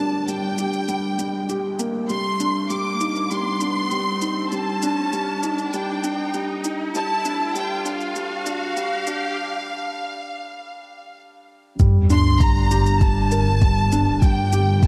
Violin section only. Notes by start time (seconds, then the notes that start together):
Already playing: A5
0.28 G5
2.10 C6
2.71 D6
3.31 C6
4.52 A5
5.74 G5
6.95 A5
7.56 G5
7.86 F5
12.12 C6
12.41 A#5
13.01 A5
14.23 G5
14.83 A5